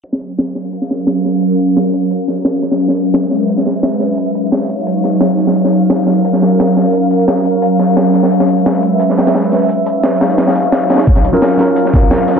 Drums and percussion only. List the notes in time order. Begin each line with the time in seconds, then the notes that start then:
0.04 closed hi-hat
0.13 snare
0.21 closed hi-hat
0.30 closed hi-hat
0.38 snare, closed hi-hat
0.55 snare, closed hi-hat
0.73 closed hi-hat
0.82 snare
0.89 snare, closed hi-hat
1.07 snare, closed hi-hat
1.24 snare, closed hi-hat, open hi-hat
1.42 closed hi-hat
1.59 closed hi-hat
1.76 snare, closed hi-hat
1.93 closed hi-hat
2.11 closed hi-hat
2.28 snare, closed hi-hat
2.45 snare, closed hi-hat
2.63 snare, closed hi-hat
2.71 snare
2.80 closed hi-hat
2.88 snare
2.97 closed hi-hat
3.05 closed hi-hat
3.14 snare, closed hi-hat
3.31 snare, closed hi-hat
3.49 closed hi-hat
3.58 snare
3.66 snare, closed hi-hat
3.83 snare, closed hi-hat
4.00 snare, closed hi-hat, open hi-hat
4.17 closed hi-hat
4.35 closed hi-hat
4.52 snare, closed hi-hat
4.69 closed hi-hat
4.87 closed hi-hat
5.04 snare, closed hi-hat
5.21 snare, closed hi-hat
5.38 snare, closed hi-hat
5.47 snare
5.55 closed hi-hat
5.65 snare
5.72 closed hi-hat
5.82 closed hi-hat
5.90 snare, closed hi-hat
6.07 snare, closed hi-hat
6.25 closed hi-hat
6.33 snare
6.41 snare, closed hi-hat
6.59 snare, closed hi-hat
6.76 snare, closed hi-hat, open hi-hat
6.93 closed hi-hat
7.11 closed hi-hat
7.28 snare, closed hi-hat
7.45 closed hi-hat
7.62 closed hi-hat
7.79 snare, closed hi-hat
7.97 snare, closed hi-hat
8.13 snare, closed hi-hat
8.23 snare
8.31 closed hi-hat
8.40 snare
8.49 closed hi-hat
8.57 closed hi-hat
8.66 snare, closed hi-hat
8.83 closed hi-hat
9.00 closed hi-hat
9.10 snare
9.18 snare, closed hi-hat
9.27 snare, closed hi-hat
9.35 snare, closed hi-hat
9.52 snare, closed hi-hat, open hi-hat
9.69 closed hi-hat
9.86 closed hi-hat
10.03 snare, closed hi-hat
10.21 snare, closed hi-hat
10.30 closed hi-hat
10.38 snare, closed hi-hat
10.47 snare, closed hi-hat
10.56 snare, closed hi-hat
10.72 snare, closed hi-hat
10.90 snare, closed hi-hat
10.94 snare, closed hi-hat
10.98 snare, closed hi-hat
11.07 kick, closed hi-hat
11.16 snare
11.25 closed hi-hat
11.34 closed hi-hat
11.42 snare, closed hi-hat
11.59 snare, closed hi-hat
11.76 closed hi-hat
11.85 snare
11.94 kick, snare, closed hi-hat
12.11 snare, closed hi-hat
12.28 snare, closed hi-hat, open hi-hat